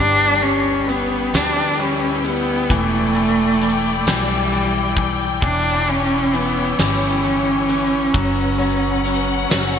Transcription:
Already playing: G1 E4 B4 G5
0.00 G3 D4
0.42 G3 C#4, closed hi-hat
0.87 G3 B3, closed hi-hat
1.33 D2 G3 D4, snare, closed hi-hat
1.79 G3 C#4, closed hi-hat
2.25 G3 B3, closed hi-hat
2.70 E1 E3 A3 D5, kick, closed hi-hat
3.15 E3, closed hi-hat
3.62 E3, closed hi-hat
4.00 A3
4.06 B1 E3 G3, snare, closed hi-hat
4.52 E3, closed hi-hat
4.96 E3, kick, closed hi-hat
5.42 E1 E3 D4 E4 C#5, kick, closed hi-hat
5.87 E3 C#4, closed hi-hat
6.33 E3 B3, closed hi-hat
6.79 G1 E3 C#4, snare, closed hi-hat
7.24 E3, closed hi-hat
7.69 E3, closed hi-hat
8.14 F#1 F#3 C#4 B4 F#5, kick, closed hi-hat
8.58 F#3, closed hi-hat
9.04 F#3, closed hi-hat
9.49 F#1 F#3 A#4, snare, closed hi-hat

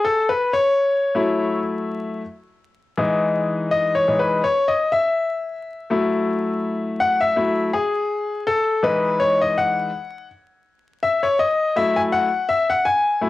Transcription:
0.05 A4
0.29 B4
0.54 C#5
1.15 F#3 A3 E4
2.97 E3 G#3 D#4
3.71 D#5
3.95 C#5
4.08 E3 G#3 D#4
4.19 B4
4.44 C#5
4.68 D#5
4.92 E5
5.90 F#3 A3 E4
7.00 F#5
7.21 E5
7.36 F#3 A3 E4
7.73 G#4
8.47 A4
8.83 E3 G#3 D#4 B4
9.20 C#5
9.41 D#5
9.58 F#5
11.03 E5
11.23 C#5
11.39 D#5
11.76 F#3 A3 E4 E5
11.96 G#5
12.12 F#5
12.49 E5
12.70 F#5
12.85 G#5
13.21 F#3 A3 E4

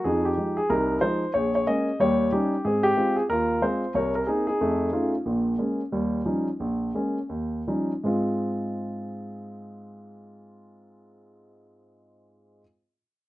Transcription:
0.04 F2 F3 D#4 G#4
0.25 G4
0.37 F3 G#3 D#4
0.57 G#4
0.70 C2 D#4 A#4
1.01 F3 G#3 D#4 C5
1.34 A#1 G#4 C#5
1.55 C#5
1.66 G#3 A#3 C#4 D#5
2.00 D#2 G3 G4 C#5
2.32 G3 C#4 D#4 G4
2.65 G#2 C4 G#4
2.83 G4
2.97 G#3 C4 F4
3.16 G#4
3.29 D#2 F4 A#4
3.62 G#3 C4 F4 C5
3.94 C2 A#4 C#5
4.15 A#4
4.27 A#3 C4 D#4 G#4
4.47 D#4 G#4
4.61 F2 A3
4.92 A3 C#4 D#4 F4
5.26 A#1 A#2
5.58 G#3 A#3 C#4
5.92 D#2 G3
6.25 F3 G3 C#4 D#4
6.60 A#1
6.94 G#3 A#3 C#4
7.29 D#2
7.67 F3 G3 C#4 D#4
8.04 G#2 G#3 C4 F4

